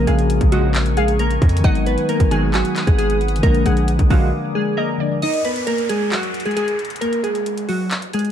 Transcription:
Already playing: tine electric piano C#3 F3 G#3 A#3 C#4, ambient pad A#4 G#5 C#6
0.07 808-style bass A#1, synth keys G#3 G#4, synth pluck F5, closed hi-hat
0.19 closed hi-hat
0.30 closed hi-hat
0.41 808-style bass A#1, kick, closed hi-hat
0.52 analog polysynth C#3 F3 G#3, synth keys F#3 F#4, synth pluck D#5, closed hi-hat
0.74 clap, closed hi-hat
0.86 closed hi-hat
0.97 synth keys G#3 G#4, synth pluck F5, closed hi-hat
1.08 closed hi-hat
1.19 synth keys A#3 A#4, closed hi-hat
1.31 closed hi-hat
1.42 808-style bass F2, kick, closed hi-hat
1.49 closed hi-hat
1.57 tine electric piano D#3, closed hi-hat
1.62 808-style bass G#1, tine electric piano F#3 G#3, synth keys D#4 D#5, ambient pad B4 F#5 D#6, synth pluck F#5, kick, closed hi-hat
1.67 tine electric piano B3 D#4
1.75 closed hi-hat
1.86 synth keys B3 B4, closed hi-hat
1.98 closed hi-hat
2.09 synth keys A#3 A#4, closed hi-hat
2.20 808-style bass G#1, kick, closed hi-hat
2.31 analog polysynth B2 D#3 F#3, synth keys G#3 G#4, synth pluck G#5, closed hi-hat
2.54 synth keys F#3 F#4, synth pluck G#5, clap, closed hi-hat
2.65 closed hi-hat
2.76 clap, closed hi-hat
2.87 808-style bass G#1, synth keys G#3 G#4, kick, closed hi-hat
2.98 synth keys G#3 G#4, closed hi-hat
3.10 closed hi-hat
3.21 closed hi-hat
3.28 closed hi-hat
3.36 tine electric piano D3, closed hi-hat
3.41 808-style bass A#1, tine electric piano F3 G#3, synth keys A#3 A#4, ambient pad A#4 D5 G#5 D6, kick, closed hi-hat
3.46 tine electric piano A#3 D4
3.54 closed hi-hat
3.66 808-style bass A#1, synth keys G#3 G#4, synth pluck F#5, closed hi-hat
3.77 closed hi-hat
3.88 closed hi-hat
3.99 808-style bass A#1, kick, closed hi-hat
4.10 808-style bass A#1, analog polysynth D3 F3 G#3, synth keys F#3 F#4, synth pluck F5, kick, open hi-hat
4.55 synth keys G#3 G#4
4.77 synth keys A#3 A#4, synth pluck D#5
4.97 tine electric piano D3 F3 G#3 A#3, synth pluck D5
5.02 tine electric piano D4
5.22 synth keys D#4 D#5, closed hi-hat, downlifter
5.33 closed hi-hat
5.45 synth keys B3 B4, closed hi-hat
5.56 closed hi-hat
5.67 synth keys A#3 A#4, closed hi-hat
5.78 closed hi-hat
5.89 synth keys G#3 G#4, closed hi-hat
6.12 synth keys F#3 F#4, clap, closed hi-hat
6.23 closed hi-hat
6.34 closed hi-hat
6.40 closed hi-hat
6.45 synth keys G#3 G#4, closed hi-hat
6.51 closed hi-hat
6.56 synth keys G#3 G#4, closed hi-hat
6.68 closed hi-hat
6.79 closed hi-hat
6.85 closed hi-hat
6.90 closed hi-hat
6.96 closed hi-hat
7.01 synth keys A#3 A#4, closed hi-hat
7.13 closed hi-hat
7.24 synth keys G#3 G#4, closed hi-hat
7.35 closed hi-hat
7.46 closed hi-hat
7.57 closed hi-hat
7.69 synth keys F#3 F#4, open hi-hat
7.91 clap, closed hi-hat
8.02 closed hi-hat
8.13 synth keys G#3 G#4, closed hi-hat
8.19 closed hi-hat
8.25 closed hi-hat

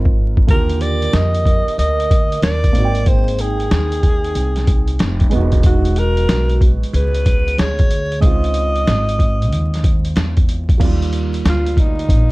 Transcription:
Already playing: upright bass G#1, grand piano C4 D#4 F4 A#4
0.05 kick
0.37 kick
0.47 upright bass D#2, grand piano D3 A#3 F4, vibraphone G4, alto saxophone A#4, kick, closed hi-hat
0.52 grand piano G4
0.69 closed hi-hat
0.81 vibraphone A#4, alto saxophone D5, closed hi-hat
1.02 closed hi-hat
1.13 upright bass F2, vibraphone A#4, alto saxophone D#5, snare, closed hi-hat
1.35 closed hi-hat
1.46 kick, closed hi-hat
1.67 muted upright bass stroke, closed hi-hat
1.78 upright bass D2, vibraphone A#4, alto saxophone D#5, closed hi-hat
2.00 closed hi-hat
2.11 kick, closed hi-hat
2.32 closed hi-hat
2.42 upright bass D#2, vibraphone A#4, alto saxophone D5, snare, closed hi-hat
2.64 kick, closed hi-hat
2.73 upright bass G#1, grand piano A#3 C4 D#4, closed hi-hat
2.78 grand piano F#4
2.85 grand piano G5
2.95 closed hi-hat
3.06 vibraphone G#4, alto saxophone C5, kick, closed hi-hat
3.28 closed hi-hat
3.39 vibraphone D#4, alto saxophone G#4, closed hi-hat
3.60 closed hi-hat
3.71 upright bass D#2, snare, closed hi-hat
3.92 closed hi-hat
4.03 kick, closed hi-hat
4.24 closed hi-hat
4.35 upright bass C2, closed hi-hat
4.56 snare, closed hi-hat
4.67 kick, closed hi-hat
4.88 closed hi-hat
4.99 upright bass F1, snare, closed hi-hat
5.20 kick, closed hi-hat
5.30 upright bass E1, grand piano G#3 B3 D#4, closed hi-hat
5.35 grand piano F#4
5.52 kick, closed hi-hat
5.63 vibraphone D#4, alto saxophone F#4, kick, closed hi-hat
5.85 closed hi-hat
5.96 vibraphone F#4, alto saxophone A#4, closed hi-hat
6.17 closed hi-hat
6.29 upright bass B1, snare, closed hi-hat
6.50 closed hi-hat
6.61 kick, closed hi-hat
6.83 muted upright bass stroke, closed hi-hat
6.93 upright bass C#2, vibraphone G#4, alto saxophone B4, closed hi-hat
7.14 closed hi-hat
7.26 kick, closed hi-hat
7.48 closed hi-hat
7.58 upright bass D2, vibraphone G#4, alto saxophone C#5, snare, closed hi-hat
7.79 kick, closed hi-hat
7.91 closed hi-hat
8.12 closed hi-hat
8.20 upright bass C#2, grand piano G#3 C4 D#4, vibraphone C5, alto saxophone D#5, kick, closed hi-hat
8.25 grand piano F4
8.44 closed hi-hat
8.54 closed hi-hat
8.76 closed hi-hat
8.87 upright bass G#1, snare, closed hi-hat
9.09 closed hi-hat
9.19 kick, closed hi-hat
9.42 closed hi-hat
9.52 upright bass D#2, closed hi-hat
9.74 snare, closed hi-hat
9.84 kick, closed hi-hat
10.05 closed hi-hat
10.16 upright bass E2, snare, closed hi-hat
10.37 kick, closed hi-hat
10.49 closed hi-hat
10.69 kick, closed hi-hat
10.78 upright bass D#2, grand piano F#3 A#3 D5, kick, closed hi-hat, crash
10.83 grand piano G3 F4
11.02 closed hi-hat
11.13 closed hi-hat
11.34 closed hi-hat
11.45 upright bass D2, snare, closed hi-hat
11.49 alto saxophone F4
11.66 closed hi-hat
11.77 alto saxophone D#4, kick, closed hi-hat
11.99 closed hi-hat
12.09 upright bass A#1, kick, closed hi-hat

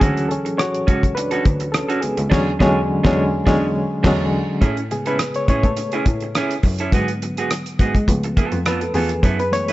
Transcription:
0.00 cello D2, reed electric piano E3 F#3 C#4 G#4, clean electric guitar C#4 F#4 A4, kick, closed hi-hat
0.17 closed hi-hat
0.29 reed electric piano C#4 A4, closed hi-hat
0.45 muted clean electric guitar stroke, closed hi-hat
0.58 reed electric piano F#4 C#5, muted clean electric guitar stroke, cross-stick, closed hi-hat
0.74 closed hi-hat
0.87 cello C#2, clean electric guitar C#4 F#4 A4, kick, closed hi-hat
1.03 muted clean electric guitar stroke, kick, closed hi-hat
1.15 reed electric piano D4 B4, muted clean electric guitar stroke, closed hi-hat
1.31 clean electric guitar C#4 F#4 A4, closed hi-hat
1.45 cello D2, muted clean electric guitar stroke, kick, closed hi-hat
1.60 muted clean electric guitar stroke, closed hi-hat
1.72 reed electric piano A4, muted clean electric guitar stroke, cross-stick, closed hi-hat
1.76 reed electric piano C#4
1.89 clean electric guitar C#4 F#4 A4, closed hi-hat
2.01 cello C#2, reed electric piano B3 G#4, muted clean electric guitar stroke, closed hi-hat
2.17 cello C#2, muted clean electric guitar stroke, closed hi-hat
2.30 cello E2, reed electric piano D3 F#3 G#3 C#4, clean electric guitar D4 G#4 C#5, kick, snare, crash
2.59 cello E2, reed electric piano D3 F#3 G#3 C#4, clean electric guitar D4 G#4 C#5, kick, snare
3.03 cello E2, reed electric piano D3 F#3 G#3 C#4, clean electric guitar D4 G#4 C#5, kick, snare
3.46 cello E2, reed electric piano D3 F#3 G#3 C#4, clean electric guitar D4 G#4 C#5, kick, snare
4.03 cello E2, reed electric piano D3 F#3 G#3 C#4, clean electric guitar D4 G#4 C#5, kick, snare, crash
4.61 cello A2, clean electric guitar C#4 E4 G#4, kick, closed hi-hat
4.77 muted clean electric guitar stroke, closed hi-hat
4.91 reed electric piano C#3 G#3 B3 G#4, muted clean electric guitar stroke, closed hi-hat
5.06 cello A2, clean electric guitar C#4 E4 A4, reed electric piano B4, closed hi-hat
5.19 muted clean electric guitar stroke, cross-stick, closed hi-hat
5.34 reed electric piano C#5, closed hi-hat
5.48 cello A2, clean electric guitar C#4 E4 G#4, reed electric piano C#5, kick, closed hi-hat
5.63 cello A3, reed electric piano A4, muted clean electric guitar stroke, kick, closed hi-hat
5.77 muted clean electric guitar stroke, closed hi-hat
5.92 clean electric guitar C#4 E4 G#4, reed electric piano E4, closed hi-hat
6.06 cello A2, muted clean electric guitar stroke, kick, closed hi-hat
6.20 muted clean electric guitar stroke, closed hi-hat
6.35 clean electric guitar C#4 E4 G#4, cross-stick, closed hi-hat
6.51 closed hi-hat
6.63 cello F#2, muted clean electric guitar stroke, kick, open hi-hat
6.78 clean electric guitar C#4 E4 A4, closed hi-hat
6.92 cello G#2, reed electric piano D3 F#3 B3, clean electric guitar B3 F#4 G#4, kick, closed hi-hat
7.08 muted clean electric guitar stroke, closed hi-hat
7.22 muted clean electric guitar stroke, closed hi-hat
7.37 cello G#2, clean electric guitar B3 F#4 G#4, closed hi-hat
7.50 muted clean electric guitar stroke, cross-stick, closed hi-hat
7.66 closed hi-hat
7.79 cello G#2, clean electric guitar B3 F#4 G#4, kick, closed hi-hat
7.95 cello G#3, muted clean electric guitar stroke, kick, closed hi-hat
8.08 cello C#2, reed electric piano F3 A3 B3, kick, closed hi-hat
8.23 muted clean electric guitar stroke, closed hi-hat
8.37 clean electric guitar B3 F4 A4, kick, closed hi-hat
8.52 cello F2, muted clean electric guitar stroke, closed hi-hat
8.66 clean electric guitar B3 F4 A4, reed electric piano B4, cross-stick, closed hi-hat
8.81 reed electric piano A4, muted clean electric guitar stroke, closed hi-hat
8.94 cello E2, clean electric guitar B3 F4 A4, reed electric piano G#4, open hi-hat
9.09 muted clean electric guitar stroke, closed hi-hat
9.23 cello F#2, clean electric guitar B3 E4 A4, kick, closed hi-hat
9.39 reed electric piano B4, muted clean electric guitar stroke, closed hi-hat
9.51 reed electric piano E3 G#3 A3 B3 C#5, muted clean electric guitar stroke, closed hi-hat
9.67 cello F#2, clean electric guitar E4 B4, closed hi-hat

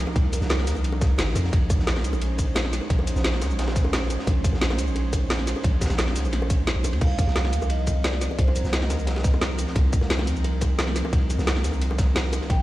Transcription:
Already playing: analog synth pad F3 D4 D#4 A#4
0.07 high bongo
0.16 808-style bass C2, kick, closed hi-hat, ride
0.33 closed hi-hat, ride, high bongo, cabasa
0.42 808-style bass C2, snare, cabasa
0.49 snare, closed hi-hat, ride, high bongo
0.59 snare
0.67 808-style bass D#2, snare, closed hi-hat, ride, cabasa
0.75 808-style bass C2, high bongo, cabasa
0.84 closed hi-hat, ride
0.92 high bongo
1.01 kick, snare, closed hi-hat, ride, cabasa
1.18 808-style bass G1, snare, closed hi-hat, ride, high bongo, cabasa
1.28 808-style bass A#1, snare
1.36 808-style bass F2, closed hi-hat, ride, high bongo, cabasa
1.44 snare
1.53 808-style bass A#1, analog synth pad G#3 C#4 C5, kick, closed hi-hat, ride, high bongo
1.70 kick, closed hi-hat, ride, high bongo, cabasa
1.79 808-style bass A#1, snare
1.87 snare, closed hi-hat, ride
1.96 snare, high bongo
2.04 808-style bass C#2, closed hi-hat, ride, cabasa
2.13 808-style bass A#1, high bongo, cabasa
2.21 closed hi-hat, ride
2.38 kick, closed hi-hat, ride, high bongo, cabasa
2.55 snare, closed hi-hat, ride, high bongo, cabasa
2.65 snare
2.73 snare, closed hi-hat, ride, cabasa
2.81 high bongo
2.90 808-style bass A#1, kick, closed hi-hat, ride
2.99 high bongo
3.07 closed hi-hat, ride, cabasa
3.16 808-style bass A#1, snare, cabasa
3.24 snare, closed hi-hat, ride, high bongo
3.33 snare
3.41 808-style bass C#2, snare, closed hi-hat, ride, high bongo, cabasa
3.51 808-style bass A#1, cabasa
3.59 snare, closed hi-hat, ride
3.67 snare, ride, high bongo
3.76 kick, snare, closed hi-hat, ride, cabasa
3.85 high bongo
3.93 snare, closed hi-hat, ride, cabasa
4.02 snare
4.10 closed hi-hat, ride, high bongo, cabasa
4.19 snare
4.27 808-style bass A#1, kick, closed hi-hat, ride, high bongo
4.44 kick, closed hi-hat, ride, cabasa
4.53 808-style bass A#1, snare, high bongo
4.61 snare, closed hi-hat, ride
4.70 snare, high bongo
4.79 808-style bass C#2, closed hi-hat, ride, cabasa
4.88 808-style bass A#1, cabasa
4.95 closed hi-hat, ride, high bongo
5.13 kick, closed hi-hat, ride, high bongo, cabasa
5.30 snare, closed hi-hat, ride, cabasa
5.39 snare, high bongo
5.47 snare, closed hi-hat, ride, cabasa
5.56 high bongo
5.63 808-style bass A#1, kick, closed hi-hat, ride
5.81 kick, snare, closed hi-hat, ride, high bongo, cabasa
5.86 snare, ride
5.90 808-style bass A#1, snare, ride, cabasa
5.98 snare, closed hi-hat, ride, high bongo
6.08 snare
6.15 808-style bass C#2, snare, closed hi-hat, ride, cabasa
6.25 808-style bass A#1, high bongo, cabasa
6.32 snare, closed hi-hat, ride
6.42 high bongo
6.50 kick, closed hi-hat, cabasa
6.67 snare, closed hi-hat, ride, high bongo, cabasa
6.76 808-style bass A#1
6.84 808-style bass A#1, closed hi-hat, ride, high bongo, cabasa
6.93 808-style bass D#2, ride
7.01 808-style bass C2, analog synth pad F3 C4 D#4 A#4, vibraphone F5, kick, closed hi-hat, ride, crash, high bongo
7.19 kick, closed hi-hat, ride, high bongo, cabasa
7.27 808-style bass C2, snare
7.36 snare, closed hi-hat, ride
7.44 snare, high bongo
7.53 808-style bass D#2, closed hi-hat, ride, cabasa
7.62 808-style bass C2, high bongo, cabasa
7.69 vibraphone D#5, closed hi-hat, ride
7.87 kick, closed hi-hat, ride, high bongo, cabasa
8.04 vibraphone D5, snare, closed hi-hat, ride, high bongo, cabasa
8.13 snare
8.21 snare, closed hi-hat, ride, cabasa
8.31 high bongo
8.38 808-style bass C2, vibraphone C5, kick, closed hi-hat, ride
8.48 high bongo
8.56 closed hi-hat, ride, cabasa
8.65 808-style bass C2, snare, cabasa
8.73 vibraphone D#5, snare, closed hi-hat, ride, high bongo
8.82 snare
8.90 808-style bass D#2, snare, closed hi-hat, ride, high bongo, cabasa
8.99 808-style bass C2, cabasa
9.07 snare, closed hi-hat, ride
9.16 snare, ride, high bongo
9.24 kick, snare, closed hi-hat, ride, cabasa
9.34 high bongo
9.41 snare, closed hi-hat, ride, cabasa
9.50 snare
9.58 closed hi-hat, ride, high bongo, cabasa
9.67 snare
9.75 808-style bass C2, kick, closed hi-hat, ride, high bongo
9.93 kick, closed hi-hat, ride, cabasa
10.01 808-style bass C2, snare, high bongo
10.10 snare, closed hi-hat, ride
10.19 snare, high bongo
10.27 808-style bass D#2, closed hi-hat, ride, cabasa
10.36 808-style bass C2, cabasa
10.44 closed hi-hat, ride, high bongo
10.61 kick, closed hi-hat, ride, high bongo, cabasa
10.79 snare, closed hi-hat, ride, cabasa
10.87 snare, high bongo
10.96 snare, closed hi-hat, ride, cabasa
11.05 high bongo
11.13 808-style bass C2, kick, closed hi-hat, ride
11.30 closed hi-hat, ride, high bongo, cabasa
11.39 808-style bass C2, snare, cabasa
11.47 snare, closed hi-hat, ride, high bongo
11.56 snare
11.64 808-style bass D#2, snare, closed hi-hat, ride, cabasa
11.72 808-style bass C2, high bongo, cabasa
11.81 closed hi-hat, ride
11.91 high bongo
11.98 kick, snare, closed hi-hat, ride, cabasa
12.15 snare, closed hi-hat, ride, high bongo, cabasa
12.24 snare
12.33 closed hi-hat, ride, high bongo, cabasa
12.41 snare
12.50 808-style bass A#1, analog synth pad G#3 C#4 C6, vibraphone G5, kick, closed hi-hat, ride, high bongo

